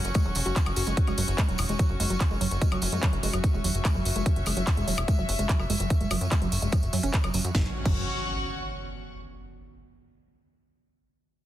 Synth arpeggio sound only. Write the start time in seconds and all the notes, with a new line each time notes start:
0.15 G#3
0.25 F#3
0.46 F#4
0.56 F#3
0.77 F#4
0.87 G#3
1.07 G#3
1.18 F#3
1.38 G#3
1.49 F#3
1.69 G#3
1.79 F#3
2.00 G#3
2.10 F#3
2.31 G#3
2.41 F#3
2.62 G#3
2.72 F#3
2.92 G#3
3.03 F#3
3.23 G#3
3.33 F#3
3.54 G#3
3.64 F#3
3.85 G#3
3.95 F#3
4.16 G#3
4.26 F#3
4.46 G#3
4.57 F#3
4.77 G#3
4.88 F#3
5.08 G#3
5.18 F#3
5.39 G#3
5.49 F#3
5.70 G#3
5.80 F#3
6.01 G#3
6.11 F#3
6.31 G#3
6.42 F#3
6.62 G#3
6.73 F#3
6.93 F#3
7.03 C#4
7.24 F#3
7.34 F#3
7.55 F#3
7.86 F#3